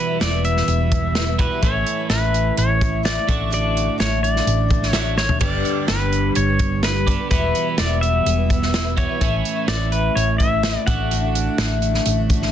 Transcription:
Already playing: E2 B2 E3 G3 B3 E4 B4
0.09 E3 G3 B3 E4
0.20 E1 E2 E3 G3 B3 E4 D5, snare, closed hi-hat
0.45 E5, closed hi-hat
0.57 snare
0.68 E1, closed hi-hat
0.79 E3 G3 B3 E4
0.92 E3 G3 B3 E4, kick, closed hi-hat
1.15 E2 B2 E3 G3 B3 E4, snare, closed hi-hat
1.28 E3 G3 B3 E4
1.39 E2 B2 E3 G3 B3 E4 B4, kick, closed hi-hat
1.43 E4
1.51 E3 G3 B3 E4
1.62 A1 A2 E3 A3 C#4 E4 C#5, kick, closed hi-hat
1.75 A3 C#4 E4
1.87 closed hi-hat
1.98 A3 C#4 E4
2.09 A1 A2 E3 A3 C#4 E4 B4, snare, closed hi-hat
2.34 closed hi-hat
2.57 A1 C#5, closed hi-hat
2.68 A3 C#4 E4
2.80 E3 A3 C#4 E4, kick, closed hi-hat
3.03 A2 E3 A3 C#4 E4 D5, snare, closed hi-hat
3.27 A1 A2 D3 A3 D4 F#4, kick, closed hi-hat
3.38 A3 D4 F#4
3.50 A2 D3 A3 D4 F#4 D5, closed hi-hat
3.77 closed hi-hat
3.86 A3 D4 F#4
3.98 A1 A2 D3 A3 D4 F#4 C#5, snare, closed hi-hat
4.23 D5, closed hi-hat
4.36 snare
4.47 A1, closed hi-hat
4.57 A3 D4 F#4
4.69 D3 A3 D4 F#4, kick, closed hi-hat
4.83 snare
4.89 A2 C#5
4.93 D3 A3 D4 F#4, snare, closed hi-hat
5.04 A3 D4 F#4
5.17 D3 A3 C#5, snare
5.28 A3 D4 F#4, floor tom
5.39 G1 G2 D3 G3 B3 D4 G4 D5, kick, closed hi-hat, crash
5.65 closed hi-hat
5.75 G3 B3 D4 G4
5.87 G1 G2 D3 G3 B3 D4 G4 B4, snare, closed hi-hat
6.12 closed hi-hat
6.35 G1 C#5, closed hi-hat
6.46 G3 B3 D4 G4
6.58 G3 B3 D4 G4, kick, closed hi-hat
6.83 G2 D3 G3 B3 D4 G4 B4, snare, closed hi-hat
7.07 G2 D3 G3 B3 D4 G4, kick, closed hi-hat
7.19 G3 B3 D4 G4
7.30 E1 E2 B2 E3 G3 B3 E4 B4, kick, closed hi-hat
7.55 closed hi-hat
7.67 E3 G3 B3 E4
7.77 E1 E2 B2 E3 G3 B3 E4 D5, snare, closed hi-hat
8.01 E5, closed hi-hat
8.26 E1, closed hi-hat
8.37 E3 G3 B3 E4
8.49 E3 G3 B3 E4, kick, closed hi-hat
8.62 snare
8.74 E2 B2 E3 G3 B3 E4, snare, closed hi-hat
8.85 E3 G3 B3 E4
8.97 E2 B2 E3 G3 B3 E4 C#5, kick, closed hi-hat
9.09 E3 G3 B3 E4
9.21 A1 A2 E3 A3 C#4 E4, kick, closed hi-hat
9.33 C#4 E4
9.45 closed hi-hat
9.57 A3 C#4 E4
9.68 A1 A2 E3 A3 C#4 E4 D5, snare, closed hi-hat
9.92 B4, closed hi-hat
10.15 A1 C#5, closed hi-hat
10.27 A3 C#4 E4
10.38 E3 A3 C#4 E4 E5, kick, closed hi-hat
10.63 A2 E3 A3 C#4 E4, snare, closed hi-hat
10.75 A3 C#4 E4
10.86 A1 A2 D3 A3 D4 F#4 F#5, kick, closed hi-hat
10.99 A3 D4 F#4
11.11 A2 D3 A3 D4 F#4, closed hi-hat
11.23 A3 D4 F#4
11.35 closed hi-hat
11.47 A3 D4 F#4
11.58 A1 A2 D3 A3 D4 F#4, snare, closed hi-hat
11.82 closed hi-hat
11.94 snare
12.06 A1, closed hi-hat
12.18 A3 D4 F#4
12.29 D3 A3 D4 F#4, kick, closed hi-hat
12.42 snare

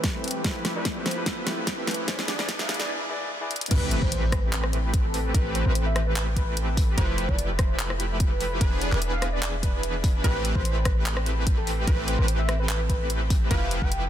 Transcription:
Already playing: E3 A3 C4 G4 A4 B4 G5, riser
0.04 kick, snare, closed hi-hat
0.13 A3 E4 G4 B4 C5
0.24 closed hi-hat
0.28 closed hi-hat
0.31 closed hi-hat
0.43 F3 A3 C4 E4 G4 A4 B4 C5, kick, snare, closed hi-hat
0.65 snare, closed hi-hat
0.75 F3 A3 C4 E4 G4 A4 B4 D5
0.85 kick, snare, closed hi-hat
0.95 F3 C4 E4 G4 A4 C5
1.06 C5, snare, closed hi-hat
1.11 closed hi-hat
1.16 F3 C4 E4 G4 A4 B4
1.26 kick, snare, closed hi-hat
1.46 F3 C4 E4 G4 A4 B4, snare, closed hi-hat
1.67 kick, snare, closed hi-hat
1.77 F3 C4 E4 G4 A4 B4
1.87 snare, closed hi-hat
1.91 closed hi-hat
1.94 closed hi-hat
2.07 E3 G#3 D4 E4 G#4 B4 C5 D5, kick, snare, closed hi-hat
2.19 snare
2.28 D5, snare, closed hi-hat
2.38 E3 B3 D4 E4 G#4 B4 D5, snare
2.49 kick, snare, closed hi-hat
2.58 E3 E4 G#4 B4 E5 F5, snare
2.69 snare, closed hi-hat
2.74 closed hi-hat
2.79 E3 E4 G#4 B4 D5, snare
3.09 E3 E4 G#4 B4 D5
3.40 E3 E4 G#4 B4 D5
3.51 closed hi-hat
3.56 closed hi-hat
3.61 closed hi-hat
3.66 closed hi-hat
3.71 A1 E3 A3 C4 G4 A4 B4 G5 B5, kick, closed hi-hat, crash, impact
3.91 closed hi-hat
4.02 A1 A3 C4 G4 B4 C5 B5, kick
4.12 closed hi-hat
4.32 B4, kick, cross-stick, closed hi-hat
4.53 clap, closed hi-hat
4.64 cross-stick
4.73 closed hi-hat
4.94 kick, closed hi-hat
5.04 A4
5.14 open hi-hat
5.34 A1 E3 A3 C4 G4 B4, kick, closed hi-hat
5.55 C5, closed hi-hat
5.65 A1 E3 A3 C4 G4 B4
5.75 closed hi-hat
5.86 E5
5.96 cross-stick, closed hi-hat
6.07 B4
6.16 clap, closed hi-hat
6.36 B4, kick, closed hi-hat
6.57 closed hi-hat
6.77 kick, open hi-hat
6.98 F1 F3 A3 E4 G4 B4 C5 E5, kick, closed hi-hat
7.18 closed hi-hat
7.29 F1 F3 A3 E4 G4 B4 D5, kick
7.39 closed hi-hat
7.59 C5, kick, cross-stick, closed hi-hat
7.79 clap, closed hi-hat
7.90 cross-stick
8.00 closed hi-hat
8.20 kick, closed hi-hat
8.31 B4
8.41 open hi-hat
8.60 E1 E3 B3 G#4 B4 C5 D5, kick, closed hi-hat
8.81 D5, closed hi-hat
8.92 E1 E3 B3 D4 G#4 B4, clap
9.02 closed hi-hat
9.12 F5
9.22 cross-stick, closed hi-hat
9.33 D5
9.43 clap, closed hi-hat
9.63 B4, kick, closed hi-hat
9.83 closed hi-hat
10.04 kick, open hi-hat
10.24 A1 E3 A3 C4 G4 A4 B4 G5, kick, closed hi-hat
10.45 closed hi-hat
10.55 A1 E3 C4 G4 B4 C5, kick
10.65 closed hi-hat
10.85 B4, kick, cross-stick, closed hi-hat
11.06 clap, closed hi-hat
11.17 cross-stick
11.26 closed hi-hat
11.47 kick, closed hi-hat
11.57 A4
11.67 open hi-hat
11.87 A1 E3 B4, kick, closed hi-hat
12.08 C5, closed hi-hat
12.19 A1 E3 A3 C4 G4 B4
12.28 closed hi-hat
12.39 E5
12.49 cross-stick, closed hi-hat
12.59 B4
12.69 clap, closed hi-hat
12.89 B4, kick, closed hi-hat
13.10 closed hi-hat
13.30 kick, open hi-hat
13.51 F1 F3 A3 E4 G4 B4 F5 B5, kick, closed hi-hat
13.71 closed hi-hat
13.82 F1 F3 A3 E4 G4 B4 G5, kick
13.92 closed hi-hat

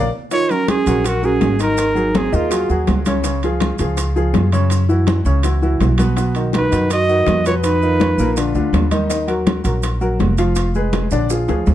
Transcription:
0.31 D#3 D#4 F4 C#5 D#5, high bongo, high conga, high timbale, maracas
0.49 F#3 C#4 F#4 A#4, high conga, high timbale, maracas
0.68 C#4 G#4, high bongo, high conga, high timbale, low timbale, maracas
0.86 A#1 F#3 F#4 A#4, high conga, high timbale, maracas
1.04 F#4 A#4, high bongo, high conga, high timbale, maracas
1.22 F#3 C#4 F#4 G#4 A#4, high conga, maracas
1.41 G#1, high bongo, low bongo, high conga, high timbale, low timbale, maracas
1.59 D#3 D#4 A#4 D#5, high timbale, maracas
1.78 high bongo, high conga, high timbale, maracas
1.95 F#3 F#4 G#4, high bongo, high conga, maracas
2.15 C4 G#4, high bongo, high conga, high timbale, low timbale, maracas
2.32 D#2 D#3 D#4 F4 G#4 D#5, high bongo, high conga, maracas
2.51 F#3 F#4 G#4, high bongo, high conga, high timbale, maracas
2.69 D#2 F#3 F#4 G#4, high bongo, high conga, maracas
2.87 C#2, high bongo, low bongo, high conga, high timbale, low timbale, maracas
3.06 C#3 C#4 C#5, high conga, high timbale, maracas
3.24 C#3 C#4 C#5, high bongo, high conga, high timbale, maracas
3.43 F3 F4 G#4, high conga, high timbale, maracas
3.60 high bongo, high conga, high timbale, low timbale, maracas
3.79 C#2 F3 F4 G#4, high timbale, maracas
3.97 high bongo, high conga, high timbale, maracas
4.16 F3 F4 G#4, high conga, maracas
4.33 F#2, high bongo, low bongo, high conga, high timbale, low timbale, maracas
4.52 C#3 C#4 C#5, high timbale, maracas
4.70 high bongo, high conga, high timbale, maracas
4.89 E3 E4 F#4, high bongo, high conga, maracas
5.07 high bongo, high conga, high timbale, low timbale, maracas
5.25 C#2 C#3 C#4 C#5, high bongo, high conga, maracas
5.43 E3 E4 F#4, high bongo, high conga, high timbale, maracas
5.62 E3 E4 F#4, high bongo, high conga, maracas
5.80 B1, high bongo, low bongo, high conga, high timbale, low timbale, maracas
5.98 B2 B3 B4, high conga, high timbale, maracas
6.17 B2 B3 B4, high bongo, high conga, high timbale, maracas
6.35 D#3 D#4 F#4, high conga, high timbale, maracas
6.53 D#4, high bongo, high conga, high timbale, low timbale, maracas
6.57 B4
6.71 F#2 D#3 D#4 F#4, high conga, high timbale, maracas
6.90 F#4 D#5, high bongo, high conga, high timbale, maracas
7.09 D#3 D#4 F#4, high conga, maracas
7.27 F2, high bongo, low bongo, high conga, high timbale, low timbale, maracas
7.46 B2 B3 F4 B4 C#5, high timbale, maracas
7.63 D#4 B4, high bongo, high conga, high timbale, maracas
7.82 D#3 D#4 F4, high bongo, high conga, maracas
8.00 high bongo, high conga, high timbale, low timbale, maracas
8.18 A#1 A#2 A#3 A#4, high bongo, high conga, maracas
8.37 D3 D4 F4, high bongo, high conga, high timbale, maracas
8.55 D2 D3 D4 F4, high bongo, high conga, maracas
8.73 D#2, high bongo, low bongo, high conga, high timbale, low timbale, maracas
8.91 D#3 D#4 D#5, high conga, high timbale, maracas
9.09 D#3 D#4 D#5, high bongo, high timbale, maracas
9.27 F#3 F#4 A#4, high conga, high timbale, maracas
9.47 high bongo, high conga, high timbale, low timbale, maracas
9.64 A#1 F#3 F#4 A#4, high conga, high timbale, maracas
9.83 high bongo, high conga, high timbale, maracas
10.01 F#3 F#4 A#4, high conga, maracas
10.19 F1, high bongo, low bongo, high conga, high timbale, low timbale, maracas
10.38 F3 F4 F5, high timbale, maracas
10.56 high bongo, high conga, high timbale, maracas
10.74 G#3 G#4 B4, high bongo, high conga, maracas
10.93 high bongo, high conga, high timbale, low timbale, maracas
11.11 A#1 D3 D4 D5, high bongo, high conga, high timbale, maracas
11.30 F3 F4 G#4, high bongo, high conga, maracas
11.48 D2 F3 F4 G#4, high bongo, high conga, high timbale, maracas
11.66 D#2, high conga, low timbale, maracas

